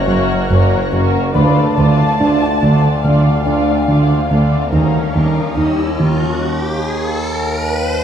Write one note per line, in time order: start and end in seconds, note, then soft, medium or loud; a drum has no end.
0.00 1.31 F#1 medium
0.00 0.91 C#5 medium
0.00 0.90 F#6 soft
0.00 0.89 A#6 soft
0.07 0.17 F#1 soft
0.07 0.17 F#2 soft
0.07 0.33 F#3 soft
0.07 0.49 A#3 soft
0.07 0.49 C#4 soft
0.07 0.49 F#4 soft
0.07 0.49 A#4 soft
0.07 2.62 C#6 soft
0.50 0.60 F#1 soft
0.50 0.76 F#2 soft
0.50 0.59 F#2 soft
0.50 0.91 A#3 soft
0.50 0.91 C#4 soft
0.50 0.91 F#4 soft
0.50 0.91 A#4 soft
0.92 1.02 F#1 soft
0.92 1.01 F#2 soft
0.92 1.18 F#2 soft
0.92 1.34 A#3 soft
0.92 1.34 C#4 soft
0.92 1.34 F#4 soft
0.92 1.34 A#4 soft
1.34 1.43 D2 soft
1.34 4.73 D2 medium
1.34 1.44 D2 soft
1.34 1.60 D3 medium
1.34 1.76 A3 soft
1.34 1.75 D4 soft
1.34 1.75 F4 soft
1.34 4.76 B4 soft
1.34 1.76 D5 soft
1.34 3.00 A5 medium
1.34 4.76 B5 soft
1.34 riser soft
1.76 1.86 D2 soft
1.76 1.87 D2 soft
1.76 2.03 D3 soft
1.76 2.18 A3 soft
1.76 2.18 D4 soft
1.76 2.18 F4 soft
1.76 2.18 D5 soft
2.19 2.28 D2 soft
2.19 2.59 A3 soft
2.19 2.59 D4 soft
2.19 2.45 D4 soft
2.19 2.60 F4 soft
2.19 2.60 D5 soft
2.60 2.70 D2 soft
2.60 2.88 D3 soft
2.60 3.02 A3 soft
2.60 3.03 D4 soft
2.60 3.03 F4 soft
2.60 3.03 D5 soft
3.03 3.13 D2 soft
3.03 3.30 D3 medium
3.03 3.44 A3 soft
3.03 3.44 D4 soft
3.03 3.45 F4 soft
3.03 3.45 D5 soft
3.03 4.73 F5 soft
3.45 3.54 D2 soft
3.45 3.55 D2 soft
3.45 3.85 A3 soft
3.45 3.85 D4 soft
3.45 3.71 D4 soft
3.45 3.87 F4 soft
3.45 3.87 D5 soft
3.87 3.97 D2 soft
3.87 4.14 D3 soft
3.87 4.28 A3 soft
3.87 4.28 D4 soft
3.87 4.29 F4 soft
3.87 4.29 D5 soft
4.29 4.39 D2 soft
4.29 4.56 D3 soft
4.29 4.71 A3 soft
4.29 4.71 D4 soft
4.29 4.72 F4 soft
4.29 4.72 D5 soft
4.72 4.81 D#2 soft
4.72 8.04 D#2 medium
4.72 4.98 D#3 medium
4.72 5.14 G3 soft
4.72 5.14 C#4 soft
4.72 5.14 D#4 soft
4.72 5.14 A#4 soft
4.72 5.56 F5 soft
5.15 5.23 D#2 soft
5.15 5.41 D#3 soft
5.15 5.56 G3 soft
5.15 5.56 C#4 soft
5.15 5.57 D#4 soft
5.15 5.57 A#4 soft
5.57 5.65 D#2 soft
5.57 5.66 D#2 soft
5.57 5.99 G3 soft
5.57 5.99 C#4 soft
5.57 5.83 D#4 soft
5.57 5.97 G4 soft
5.57 6.43 D#5 soft
5.99 6.07 D#2 soft
5.99 6.25 D#3 soft
5.99 6.42 G3 soft
5.99 6.41 C#4 soft
5.99 6.42 A#4 soft